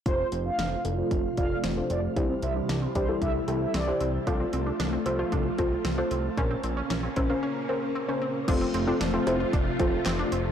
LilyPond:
<<
  \new Staff \with { instrumentName = "Analog polysynth" } { \time 4/4 \key f \major \tempo 4 = 114 c''8 r16 f''8. r4 f''8 r8 d''16 r16 | r8 e''16 r8. c''8 e''16 r8 e''16 d''8. r16 | r1 | r1 |
r1 | }
  \new Staff \with { instrumentName = "Synth pluck" } { \time 4/4 \key f \major <f' a' c''>4 r8 <f' a' d''>16 <f' a' c''>8 r16 <f' a' d''>8 r16 <f' a' c''>8 r16 | <e' g' c''>4 r8 <e' g' d''>16 <e' g' a'>8 r16 <e' g' a'>8 r16 <e' g' c''>8 r16 | <f' a' c''>4 r8 <f' a' c''>16 <f' a' c''>8 r16 <f' a' c''>8 r16 <f' a' c''>8 r16 | <des' bes' c''>4 r8 <des' bes' c''>16 <des' bes' c''>8 r16 <des' bes' c''>8 r16 <des' bes' c''>8 r16 |
<c' f' a' c''>8 r16 <c' f' a' c''>16 r16 <c' f' a' c''>16 <c' f' a' c''>8. r16 <c' f' a' c''>4 r8 | }
  \new Staff \with { instrumentName = "Synth arpeggio sound" } { \time 4/4 \key f \major d'16 c'16 c'16 d'16 d'16 c'16 e'16 f'16 d'8 c'8 c'16 d'16 c'8 | d'16 c'16 c'16 d'16 d'16 c'16 d'16 e'16 d'8 c'8 c'16 d'16 c'8 | d'16 c'16 c'16 d'16 d'16 c'16 e'16 f'16 d'8 c'8 c'16 d'16 c'8 | des'16 c'16 c'16 des'16 des'16 c'16 e'16 f'16 des'8 c'8 c'16 des'16 c'8 |
d'16 c'16 c'16 d'16 d'16 c'16 e'16 f'16 d'8 c'8 c'16 d'16 c'8 | }
  \new Staff \with { instrumentName = "String machine" } { \time 4/4 \key f \major << { <a f'>1 | <g e'>1 | <a f'>1 | <bes des'>1 |
<a f'>1 | } \\ { c1~ | c1 | r1 | r1 |
c1 | } >> }
  \new Staff \with { instrumentName = "Analog synth bass" } { \clef bass \time 4/4 \key f \major f,,8 f,,8 f,,8 f,,8 f,,8 f,,8 f,,8 f,,8 | c,8 c,8 c,8 c,8 c,8 c,8 c,8 c,8 | c,8 c,8 c,8 c,8 c,8 c,8 c,8 c,8 | bes,,8 bes,,8 bes,,8 bes,,8 r2 |
f,,8 f,,8 f,,8 f,,8 f,,8 f,,8 f,,8 f,,8 | }
  \new DrumStaff \with { instrumentName = "Drums" } \drummode { \time 4/4 <hh bd>8 hh8 <hh sn>8 hh8 <hh bd>8 <hh bd>8 <hh sn>8 hh8 | <hh bd>8 hh8 <hh sn>8 <hh bd>8 <hh bd>8 hh8 <hh sn>8 hh8 | <hh bd>8 hh8 <hh sn>8 hh8 <hh bd>8 <hh bd>8 <hh sn>8 hh8 | <hh bd>8 hh8 <hh sn>8 <hh bd>8 r4 r4 |
<cymc hh bd>8 hh8 <hh sn>8 hh8 <hh bd>8 <hh bd>8 <hc hh sn>8 hh8 | }
>>